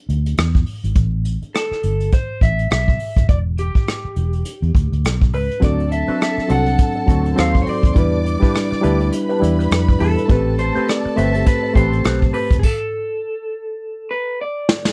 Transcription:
0.09 fingered electric bass D2, closed hi-hat
0.26 closed hi-hat
0.37 fingered electric bass E2, cross-stick, closed hi-hat
0.54 kick, closed hi-hat
0.66 open hi-hat
0.84 fingered electric bass G#1, closed hi-hat
0.95 fingered electric bass A1, kick, closed hi-hat
1.25 closed hi-hat
1.42 muted fingered electric bass stroke, closed hi-hat
1.54 clean electric guitar A4, cross-stick, closed hi-hat
1.71 muted fingered electric bass stroke, cross-stick
1.83 fingered electric bass G1, closed hi-hat
2.00 closed hi-hat
2.12 clean electric guitar C5, kick, closed hi-hat
2.41 fingered electric bass A1, clean electric guitar E5, kick, closed hi-hat
2.59 closed hi-hat
2.71 fingered electric bass B1, clean electric guitar E5, cross-stick, closed hi-hat
2.88 kick
2.99 open hi-hat
3.16 fingered electric bass D#1, kick, closed hi-hat
3.29 fingered electric bass E1, clean electric guitar D5, kick, closed hi-hat
3.58 clean electric guitar G4, closed hi-hat
3.75 kick, closed hi-hat
3.87 cross-stick, closed hi-hat
4.05 muted fingered electric bass stroke
4.16 fingered electric bass E1, closed hi-hat
4.33 closed hi-hat
4.45 closed hi-hat
4.62 fingered electric bass E2, closed hi-hat
4.75 fingered electric bass D2, kick, closed hi-hat
4.92 fingered electric bass D2, closed hi-hat
5.04 fingered electric bass B1, cross-stick, closed hi-hat
5.21 kick, closed hi-hat
5.33 fingered electric bass C#2, clean electric guitar B4, open hi-hat
5.51 closed hi-hat
5.60 fingered electric bass D2, reed electric piano F#3 C4 D4 A4, clean electric guitar C4 F#4 A4 D5, string section A4 A5, kick, closed hi-hat
5.80 closed hi-hat
5.91 clean electric guitar E5, muted clean electric guitar stroke, closed hi-hat
6.06 reed electric piano F#3 C4 D4 A4, clean electric guitar C4 F#4 B4, muted fingered electric bass stroke, closed hi-hat
6.21 clean electric guitar E5, cross-stick, closed hi-hat
6.38 muted fingered electric bass stroke, muted clean electric guitar stroke, cross-stick
6.48 fingered electric bass C2, reed electric piano F#3 C4 D4 A4, clean electric guitar C4 F#4 A4 F#5, closed hi-hat
6.66 muted clean electric guitar stroke, closed hi-hat
6.78 kick, closed hi-hat
6.96 muted clean electric guitar stroke
7.07 fingered electric bass D2, reed electric piano F#3 C4 D4 A4, clean electric guitar C4 F#4 A4, kick, closed hi-hat
7.24 muted clean electric guitar stroke, closed hi-hat
7.36 fingered electric bass D#2, reed electric piano F#3 C4 D#4 A4, clean electric guitar C4 F#4 A4 F5, string section C5 C6, cross-stick, closed hi-hat
7.54 muted clean electric guitar stroke, kick
7.62 clean electric guitar C#5
7.66 clean electric guitar C4 F#4 A4 D5, muted fingered electric bass stroke, open hi-hat
7.83 fingered electric bass D#2, kick, closed hi-hat
7.94 fingered electric bass E2, reed electric piano G3 D4 E4 B4, clean electric guitar D4 G4 B4, string section D5 D6, kick, closed hi-hat
8.14 closed hi-hat
8.24 muted clean electric guitar stroke, closed hi-hat
8.40 reed electric piano G3 D4 E4 B4, clean electric guitar D4 G4 B4, kick, closed hi-hat
8.54 cross-stick, closed hi-hat
8.71 muted clean electric guitar stroke, muted fingered electric bass stroke, cross-stick
8.81 fingered electric bass D2, reed electric piano G3 D4 E4 B4, clean electric guitar D4 G4 B4, closed hi-hat
9.00 muted clean electric guitar stroke, closed hi-hat
9.12 string section B4 B5, muted clean electric guitar stroke, closed hi-hat
9.29 clean electric guitar D4 G4 B4, closed hi-hat
9.40 fingered electric bass E2, reed electric piano G3 D4 E4 D5, muted clean electric guitar stroke, closed hi-hat
9.59 muted clean electric guitar stroke, closed hi-hat
9.71 fingered electric bass F2, muted clean electric guitar stroke, cross-stick, closed hi-hat
9.88 muted clean electric guitar stroke, kick
9.99 fingered electric bass E2, reed electric piano G3 D4 E4 B4, clean electric guitar D4 G4 A4 B4, open hi-hat
10.17 muted clean electric guitar stroke, closed hi-hat
10.28 fingered electric bass A1, reed electric piano A3 C4 G4 B4, clean electric guitar C4 G4 B4, string section A4 A5, kick, closed hi-hat
10.59 clean electric guitar C5, muted clean electric guitar stroke, closed hi-hat
10.74 reed electric piano A3 C4 G4 B4, clean electric guitar C4 G4 C5, closed hi-hat
10.88 clean electric guitar D5, cross-stick, closed hi-hat
11.05 muted clean electric guitar stroke, muted fingered electric bass stroke
11.16 fingered electric bass G1, reed electric piano A3 C4 G4 C5, clean electric guitar C4 G4 B4 E5, closed hi-hat
11.34 muted clean electric guitar stroke, closed hi-hat
11.46 clean electric guitar B4, kick, closed hi-hat
11.63 muted clean electric guitar stroke
11.73 fingered electric bass A1, reed electric piano A3 C4 G4 C5, clean electric guitar C4 G4 C5, kick, closed hi-hat
11.78 clean electric guitar B4
11.93 muted clean electric guitar stroke, closed hi-hat
12.04 fingered electric bass B1, clean electric guitar C4 G4 B4, cross-stick, closed hi-hat
12.22 muted clean electric guitar stroke, kick
12.33 clean electric guitar C4 G4 B4, open hi-hat
12.51 fingered electric bass D#1, muted clean electric guitar stroke, kick, closed hi-hat
12.59 clean electric guitar G#4, kick, crash
12.65 clean electric guitar A4
14.11 clean electric guitar B4
14.41 clean electric guitar D5
14.69 snare
14.85 snare

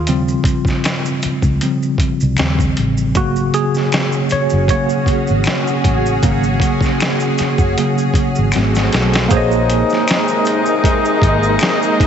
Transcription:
Already playing: fingered electric bass D#2, tine electric piano F4
0.07 tine electric piano C#3 F3 G3 C4, closed hi-hat, maracas
0.28 maracas
0.44 kick, closed hi-hat, maracas
0.65 kick, snare, maracas
0.84 finger snap, snare, closed hi-hat, maracas
1.05 maracas
1.22 muted fingered electric bass stroke, closed hi-hat, maracas
1.42 fingered electric bass C#2, kick, maracas
1.61 tine electric piano C#3 F3 G3 C4, closed hi-hat, maracas
1.83 maracas
1.98 muted fingered electric bass stroke, kick, closed hi-hat, maracas
2.20 fingered electric bass C2, maracas
2.37 fingered electric bass D#2, tine electric piano C#3 F3 G3 C4, finger snap, snare, closed hi-hat, maracas
2.59 kick, maracas
2.77 fingered electric bass A1, closed hi-hat
2.98 maracas
3.14 fingered electric bass G#1, tine electric piano C#3 F#3 A#3 F#4, string machine C#4 F#4 G#4, kick, closed hi-hat, maracas
3.36 maracas
3.54 tine electric piano G#4, closed hi-hat, maracas
3.75 snare, maracas
3.92 finger snap, snare, closed hi-hat, maracas
4.12 maracas
4.29 tine electric piano C#5, muted fingered electric bass stroke, closed hi-hat, maracas
4.50 fingered electric bass F#1, maracas
4.68 tine electric piano C#3 F#3 A#3 C#5, kick, closed hi-hat, maracas
4.89 maracas
5.06 muted fingered electric bass stroke, kick, closed hi-hat, maracas
5.27 fingered electric bass G#1, maracas
5.44 finger snap, snare, closed hi-hat, maracas
5.67 maracas
5.84 fingered electric bass A1, kick, closed hi-hat
6.06 maracas
6.23 fingered electric bass G#1, tine electric piano C#3 F#3 A#3, kick, closed hi-hat, maracas
6.44 maracas
6.60 kick, closed hi-hat, maracas
6.81 kick, snare, maracas
7.00 finger snap, snare, closed hi-hat, maracas
7.20 maracas
7.38 muted fingered electric bass stroke, snare, closed hi-hat, maracas
7.58 fingered electric bass F#1, kick, maracas
7.77 tine electric piano C#3 F#3 A#3, closed hi-hat, maracas
7.98 maracas
8.14 muted fingered electric bass stroke, kick, closed hi-hat, maracas
8.35 fingered electric bass G#1, maracas
8.52 fingered electric bass G#1, tine electric piano C4, string machine F#4 A4 C5, finger snap, closed hi-hat, maracas
8.56 tine electric piano F#3 A3, snare
8.75 snare, maracas
8.93 fingered electric bass B1, snare, closed hi-hat
9.13 snare, closed hi-hat, maracas
9.28 fingered electric bass A#1, horn section C3 D#3 G#3 D#4, string machine G#3 A#3 D#4, tine electric piano A#3 G#4, kick, closed hi-hat, maracas
9.33 tine electric piano C5 C#5
9.37 tine electric piano D#5
9.52 maracas
9.70 closed hi-hat, maracas
9.90 snare, maracas
10.08 finger snap, snare, closed hi-hat, maracas
10.28 maracas
10.45 closed hi-hat, maracas
10.66 maracas
10.84 kick, closed hi-hat, maracas
11.05 maracas
11.22 fingered electric bass G#1, kick, closed hi-hat
11.43 maracas
11.59 finger snap, snare, closed hi-hat, maracas
11.83 maracas
12.00 kick, closed hi-hat

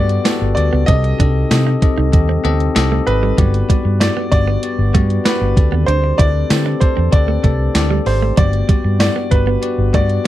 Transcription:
Already playing: fingered electric bass G2, tine electric piano G2 B3 F#4 G4 A4 B4 D5, glass harmonica G3 D4 F#4 B4, grand piano D5
0.09 closed hi-hat
0.24 tine electric piano B3 F#4 G4 A4, clean electric guitar B3, snare, closed hi-hat, tambourine
0.41 fingered electric bass G1, muted clean electric guitar stroke
0.55 fingered electric bass D2, tine electric piano B3 F#4 G4 D5, grand piano D5, closed hi-hat
0.73 fingered electric bass C#2, clean electric guitar B3
0.86 fingered electric bass C2, tine electric piano C3 C4 G4 A4 D#5, glass harmonica G3 C4 D#4 A4, clean electric guitar C4, grand piano D#5, kick, closed hi-hat
1.04 muted clean electric guitar stroke, closed hi-hat
1.19 fingered electric bass C2, tine electric piano C4 G4 A4 D#5, clean electric guitar D4, kick, closed hi-hat
1.50 fingered electric bass C3, tine electric piano C4 G4 A4 D#5, snare, closed hi-hat, tambourine
1.67 clean electric guitar D#4
1.82 tine electric piano C4 G4 A4 D#5, muted clean electric guitar stroke, kick, closed hi-hat
1.98 fingered electric bass C2, clean electric guitar D#4
2.12 fingered electric bass D#2, tine electric piano C4 G4 A4 D#5, muted clean electric guitar stroke, kick, closed hi-hat
2.29 clean electric guitar C4
2.44 fingered electric bass D2, clean electric guitar B3, tine electric piano C4 G4 A4 D#5, closed hi-hat
2.60 closed hi-hat
2.75 fingered electric bass C2, tine electric piano C4 G4 A4 D#5, snare, closed hi-hat, tambourine
2.92 clean electric guitar A3
3.06 fingered electric bass G#1, tine electric piano C4 G4 A4 D#5, grand piano B4, muted clean electric guitar stroke, closed hi-hat
3.23 clean electric guitar G3
3.38 fingered electric bass G1, tine electric piano G2 B3 F#4 G4 D5, clean electric guitar F#3, glass harmonica D4 F#4 B4, kick, closed hi-hat
3.54 closed hi-hat
3.69 clean electric guitar G3, tine electric piano B3 F#4 G4 D5, kick, closed hi-hat
3.85 fingered electric bass G2, muted clean electric guitar stroke
4.00 tine electric piano B3 F#4 G4 D5, grand piano D5, snare, closed hi-hat, tambourine
4.17 clean electric guitar B3
4.32 fingered electric bass G1, tine electric piano B3 F#4 G4 D5, grand piano D5, muted clean electric guitar stroke, kick, closed hi-hat
4.48 clean electric guitar B3
4.63 tine electric piano B3 F#4 G4 D5, closed hi-hat
4.79 fingered electric bass G1
4.94 fingered electric bass G2, clean electric guitar A3, tine electric piano B3 F#4 G4 D5, kick, closed hi-hat
5.10 closed hi-hat
5.25 tine electric piano B3 F#4 G4 D5, clean electric guitar B3, grand piano B4, snare, closed hi-hat, tambourine
5.41 fingered electric bass G1, muted clean electric guitar stroke
5.56 fingered electric bass D2, tine electric piano D3 C4 G4 A4 D5, glass harmonica A3 C4 D4 G4, kick, closed hi-hat
5.72 fingered electric bass D#2, clean electric guitar B3
5.86 fingered electric bass D2, clean electric guitar D4, grand piano C5, closed hi-hat
6.04 muted clean electric guitar stroke
6.18 fingered electric bass D2, tine electric piano C4 G4 A4 B4, clean electric guitar E4, grand piano D5, kick, closed hi-hat
6.50 fingered electric bass D3, tine electric piano C4 G4 A4 C5, snare, closed hi-hat, tambourine
6.66 clean electric guitar D4
6.80 tine electric piano C4 G4 A4 D5, grand piano C5, muted clean electric guitar stroke, kick, closed hi-hat
6.97 fingered electric bass E2, clean electric guitar C4
7.11 fingered electric bass D2, tine electric piano C4 G4 A4 B4, grand piano D5, muted clean electric guitar stroke, kick, closed hi-hat
7.28 clean electric guitar A3
7.43 fingered electric bass C2, clean electric guitar A3, tine electric piano C4 G4 A4 D5, kick, closed hi-hat
7.74 fingered electric bass D2, tine electric piano C4 G4 A4 D5, snare, closed hi-hat, tambourine
7.91 clean electric guitar G3
8.06 fingered electric bass G#1, tine electric piano C4 G4 A4 C5, grand piano C5, muted clean electric guitar stroke, open hi-hat
8.23 clean electric guitar A3
8.37 fingered electric bass G1, tine electric piano G2 B3 F#4 G4 D5, clean electric guitar F#3, glass harmonica G3 F#4 B4, grand piano D5, kick, closed hi-hat
8.53 closed hi-hat
8.69 clean electric guitar G3, tine electric piano B3 F#4 G4 D5, kick, closed hi-hat
8.84 fingered electric bass G2, muted clean electric guitar stroke
8.99 tine electric piano B3 F#4 G4 D5, grand piano D5, snare, closed hi-hat, tambourine
9.16 clean electric guitar B3
9.31 fingered electric bass G1, tine electric piano B3 F#4 G4 B4, grand piano B4, muted clean electric guitar stroke, kick, closed hi-hat
9.47 clean electric guitar B3
9.62 tine electric piano B3 F#4 G4 D5, closed hi-hat
9.78 fingered electric bass G1
9.93 fingered electric bass G2, clean electric guitar A3, tine electric piano B3 F#4 G4 D5, grand piano D5, kick, closed hi-hat
10.10 closed hi-hat

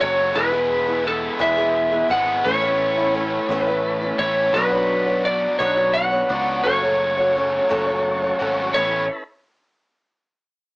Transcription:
Already playing: steel-string acoustic guitar F#3, tonewheel organ C#4 F#4 A4 C#5
0.00 picked electric bass F#1, overdriven electric guitar F#2 C#3 A3, steel-string acoustic guitar C#4 F#4 A4, electric slide guitar C#5
0.34 picked electric bass E1, steel-string acoustic guitar E2 E3 G#3 B3 E4 G#4, overdriven electric guitar B2, tonewheel organ B3 E4 B4, electric slide guitar B4
0.38 tonewheel organ G#5
0.52 steel-string acoustic guitar G#3 B3 E4 G#4
0.86 steel-string acoustic guitar G#3 B3 E4 G#4
1.05 steel-string acoustic guitar B3 E4, electric slide guitar A4
1.39 picked electric bass E1, steel-string acoustic guitar E2 E3 G#3 B3 E4 G#4, electric slide guitar E5
1.57 steel-string acoustic guitar G#3 B3 E4 G#4
1.91 steel-string acoustic guitar G#3 B3 E4 G#4
2.08 picked electric bass G#1, steel-string acoustic guitar G#3 B3 E4 G#4, electric slide guitar F#5
2.12 overdriven electric guitar E2 B2 E3 G#3
2.44 picked electric bass A1, steel-string acoustic guitar A2 A3 B3 C#4 E4, overdriven electric guitar E3, tonewheel organ C#4 E4 A4 B4, electric slide guitar C#5
2.62 steel-string acoustic guitar B3 C#4 E4
2.97 steel-string acoustic guitar B3 C#4 E4
3.14 steel-string acoustic guitar A3 B3 C#4 E4
3.49 picked electric bass A1, steel-string acoustic guitar A2 A3 B3 C#4 E4
3.63 steel-string acoustic guitar E4, electric slide guitar B4
3.68 steel-string acoustic guitar B3 C#4
4.01 steel-string acoustic guitar B3 C#4 E4
4.18 picked electric bass A1, steel-string acoustic guitar A3 B3 C#4 E4, electric slide guitar C#5
4.23 overdriven electric guitar A2 E3
4.53 picked electric bass B1, steel-string acoustic guitar B2 F#3 B3 D4 F#4 C#5, tonewheel organ D4 F#4 B4, electric slide guitar B4
4.72 steel-string acoustic guitar B3 D4 F#4 C#5
5.06 steel-string acoustic guitar B3 D4 F#4 C#5
5.23 steel-string acoustic guitar B3 D4 F#4, electric slide guitar D5
5.59 picked electric bass B1, steel-string acoustic guitar B2 F#3 B3 D4 F#4 C#5, electric slide guitar C#5
5.75 steel-string acoustic guitar B3 D4 F#4 C#5
5.94 electric slide guitar F#5
6.12 steel-string acoustic guitar B3 D4 F#4 C#5
6.29 picked electric bass C#2, overdriven electric guitar B2 F#3, steel-string acoustic guitar B3 D4 F#4 C#5
6.63 picked electric bass F#1, overdriven electric guitar F#2 C#3 A3, steel-string acoustic guitar F#3 C#4 F#4 A4 C#5, tonewheel organ C#4 F#4 A4 C#5, electric slide guitar C#5
6.83 steel-string acoustic guitar F#4 A4 C#5
7.18 steel-string acoustic guitar F#4 A4 C#5
7.36 steel-string acoustic guitar C#4 F#4 A4 C#5
7.69 picked electric bass F#1, steel-string acoustic guitar F#3 C#4 F#4 A4 C#5
7.86 steel-string acoustic guitar F#4 A4 C#5
8.22 steel-string acoustic guitar F#4 A4 C#5
8.39 picked electric bass G#1, overdriven electric guitar F#2 C#3 F#3 A3, steel-string acoustic guitar C#4 F#4 A4 C#5
8.74 picked electric bass A1, overdriven electric guitar A2 E3 C#4, steel-string acoustic guitar A3 B3 E4 A4 C#5, tonewheel organ C#4 E4 A4 B4, electric slide guitar C#5

